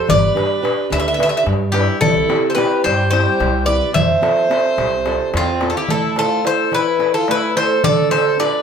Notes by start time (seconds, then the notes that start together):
0.07 G1 G3 B4 D5, darbuka dum
0.35 D4 G4 B4, darbuka tek
0.62 D4 G4 B4, darbuka tek
0.90 D2 D3 B4 E5, darbuka tek
1.00 E5
1.08 E5
1.14 D4 E5
1.19 G4 B4, darbuka tek
1.23 E5
1.29 E5
1.37 E5
1.46 G2 G3, darbuka tek
1.72 D4 G4 B4, darbuka tek
1.76 E4
1.89 darbuka tek
2.01 C2 C3 E4 A4, darbuka dum
2.29 C4 E4 G4, darbuka tek
2.50 A4 C5
2.55 C4 E4 G4 B4, darbuka tek
2.84 G2 G3 G4 C5, darbuka tek
3.11 C4 E4 G4 C5, darbuka tek
3.40 C2 C3, darbuka tek
3.66 C4 E4 G4 B4 D5
3.82 darbuka tek
3.94 F2 F3 C5 E5, darbuka dum
4.22 C4 F4 A4, darbuka tek
4.37 darbuka tek
4.50 C4 F4 A4, darbuka tek
4.64 darbuka tek
4.78 C2 C3, darbuka tek
5.05 C4 F4 A4, darbuka tek
5.20 darbuka tek
5.34 E2 C4 F4, darbuka tek
5.47 darbuka tek
5.61 C4 F4 A4, darbuka tek
5.70 A4
5.74 F4 G4
5.80 E4
5.88 A3 A4, darbuka dum
5.93 E4
6.16 E4 A4 C5, darbuka tek
6.22 F4
6.31 darbuka tek
6.44 E4 A4 C5, darbuka tek
6.50 A4
6.59 darbuka tek
6.71 E3 E4 B4, darbuka tek
6.99 E4 A4 C5, darbuka tek
7.14 F4 A4, darbuka tek
7.28 A3 E4 B4, darbuka tek
7.43 darbuka tek
7.56 E4 A4 C5, darbuka tek
7.61 A4
7.84 D3 A4 D5, darbuka dum
8.11 D4 F4 A4 C5, darbuka tek
8.15 A4
8.26 darbuka tek
8.39 D4 F4 A4 B4 D5, darbuka tek
8.54 darbuka tek